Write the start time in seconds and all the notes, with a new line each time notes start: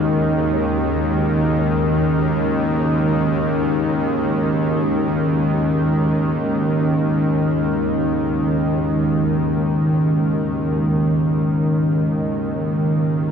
Already playing: D#2 D#3 G#3 C#4 D#4 F#4 A#4 D#5